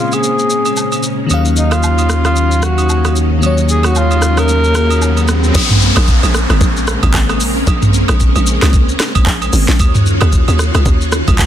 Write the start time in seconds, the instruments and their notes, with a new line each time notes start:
Already playing: fm electric piano A#2 A#3 C4 C#4 G#4 C5, string machine C#3 G#3 A#3 C#4
0.00 alto saxophone F4
0.12 alto saxophone G#4, high agogo, shaker
0.23 shaker
0.39 shaker
0.50 shaker
0.66 high agogo, shaker
0.77 low woodblock, shaker
0.92 high agogo, shaker
1.03 shaker
1.26 sub bass D#2, fm electric piano D#3 A#3 C#4, string machine D#3 F#3 C#4 F5, riser, shaker
1.31 fm electric piano F#3 F5, high agogo
1.45 shaker
1.57 alto saxophone D#4, shaker
1.71 alto saxophone F4, cross-stick, high agogo, shaker
1.83 low woodblock, shaker
1.98 high agogo, shaker
2.10 cross-stick, shaker
2.25 alto saxophone F4, cross-stick, high agogo, shaker
2.36 shaker
2.52 shaker
2.63 alto saxophone F#4, cross-stick, shaker
2.78 high agogo, shaker
2.89 low woodblock, shaker
3.05 cross-stick, high agogo, shaker
3.16 shaker
3.39 fm electric piano D#3 A#3 C#4, string machine D#4, shaker
3.43 fm electric piano F#3 C#5, high agogo
3.58 shaker
3.69 alto saxophone G#4, shaker
3.83 alto saxophone F#4, cross-stick, high agogo, shaker
3.95 alto saxophone F4, low woodblock, shaker
4.11 high agogo, shaker
4.22 cross-stick, shaker
4.37 alto saxophone A#4, cross-stick, high agogo, shaker
4.49 shaker
4.64 shaker
4.73 fm electric piano D#3 A#3 C#4 F#4 G#4, cross-stick, shaker
4.90 high agogo, shaker
5.02 low woodblock, shaker
5.17 high agogo, shaker
5.28 cross-stick, shaker
5.44 shaker
5.55 log drum bass A#1, string machine G#3 A#3 C4 C#4, kick, crash, downlifter, high agogo, shaker
5.70 mid tom, shaker
5.82 shaker
5.96 log drum bass A#1, cross-stick, high agogo, shaker
6.08 kick, shaker
6.23 log drum bass A#1, high agogo, shaker
6.34 cross-stick, shaker
6.50 log drum bass G#1, cross-stick, high agogo, shaker
6.61 log drum bass A#1, kick, shaker
6.77 shaker
6.88 cross-stick, shaker
7.03 log drum bass G#1, kick, high agogo, shaker
7.14 log drum bass G#1, kick, clap, low woodblock, shaker
7.29 cross-stick, high agogo, shaker
7.40 log drum bass A#1, open hi-hat, shaker
7.67 log drum bass A#1, kick, high agogo, shaker
7.82 mid tom, shaker
7.94 shaker
8.08 log drum bass A#1, cross-stick, high agogo, shaker
8.20 kick, shaker
8.36 log drum bass A#1, high agogo, shaker
8.47 shaker
8.62 log drum bass C#2, cross-stick, snare, high agogo, shaker
8.73 kick, shaker
8.89 shaker
9.00 cross-stick, snare, shaker
9.15 kick, high agogo, shaker
9.26 log drum bass A#1, kick, clap, low woodblock, shaker
9.42 high agogo, shaker
9.53 log drum bass G#1, open hi-hat, shaker
9.68 log drum bass A#1, snare
9.80 log drum bass D#2, string machine D#3 C#4 F4 F#4, kick, high agogo, shaker
9.95 mid tom, shaker
10.06 shaker
10.21 log drum bass D#2, cross-stick, high agogo, shaker
10.33 kick, shaker
10.48 log drum bass D#2, high agogo, shaker
10.59 cross-stick, shaker
10.75 log drum bass C#2, cross-stick, high agogo, shaker
10.86 log drum bass D#2, kick, shaker
11.01 shaker
11.12 cross-stick, shaker
11.28 log drum bass C#2, kick, high agogo, shaker
11.39 log drum bass C#2, kick, clap, low woodblock, shaker